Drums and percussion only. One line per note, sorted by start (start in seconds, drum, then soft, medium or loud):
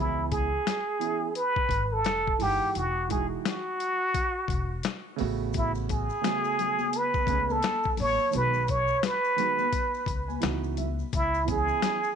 0.32 kick medium
0.32 closed hi-hat medium
0.67 snare loud
0.67 closed hi-hat medium
1.01 closed hi-hat medium
1.35 closed hi-hat medium
1.56 kick medium
1.69 kick medium
1.69 closed hi-hat medium
2.05 snare loud
2.05 closed hi-hat medium
2.27 kick medium
2.40 open hi-hat soft
2.75 closed hi-hat medium
3.10 kick medium
3.10 closed hi-hat medium
3.46 snare loud
3.46 closed hi-hat medium
3.80 closed hi-hat medium
4.14 kick medium
4.14 closed hi-hat medium
4.48 kick medium
4.48 closed hi-hat medium
4.83 snare loud
4.83 closed hi-hat medium
5.19 open hi-hat soft
5.53 kick medium
5.53 closed hi-hat medium
5.53 maracas medium
5.75 maracas medium
5.89 kick medium
5.89 closed hi-hat medium
5.89 maracas soft
6.10 maracas medium
6.24 snare loud
6.24 closed hi-hat medium
6.24 low conga soft
6.24 maracas medium
6.44 maracas soft
6.59 closed hi-hat medium
6.59 low conga medium
6.59 maracas soft
6.79 high conga medium
6.79 maracas soft
6.93 closed hi-hat loud
6.93 maracas medium
7.14 kick medium
7.14 maracas medium
7.27 kick medium
7.27 closed hi-hat medium
7.27 maracas soft
7.50 high conga soft
7.50 maracas soft
7.63 snare loud
7.63 closed hi-hat medium
7.63 maracas medium
7.83 kick loud
7.83 maracas soft
7.97 open hi-hat soft
7.97 high conga soft
7.97 low conga medium
7.97 maracas soft
8.18 maracas soft
8.32 closed hi-hat medium
8.32 maracas medium
8.54 maracas medium
8.67 kick medium
8.67 closed hi-hat medium
8.67 maracas soft
8.88 maracas soft
9.03 snare loud
9.03 closed hi-hat medium
9.03 maracas medium
9.24 maracas soft
9.38 closed hi-hat medium
9.38 low conga medium
9.38 maracas soft
9.59 high conga medium
9.59 maracas soft
9.73 kick medium
9.73 closed hi-hat medium
9.73 maracas medium
9.94 maracas medium
10.06 kick medium
10.06 closed hi-hat medium
10.06 maracas soft
10.30 high conga medium
10.30 maracas soft
10.42 snare loud
10.42 closed hi-hat medium
10.42 maracas medium
10.64 maracas soft
10.77 closed hi-hat medium
10.77 high conga soft
10.77 low conga medium
10.77 maracas soft
10.99 maracas soft
11.13 kick loud
11.13 closed hi-hat medium
11.13 maracas medium
11.34 maracas soft
11.48 kick medium
11.48 closed hi-hat medium
11.48 maracas soft
11.68 maracas soft
11.82 snare loud
11.82 closed hi-hat medium
11.82 low conga medium
11.82 maracas medium
12.04 maracas soft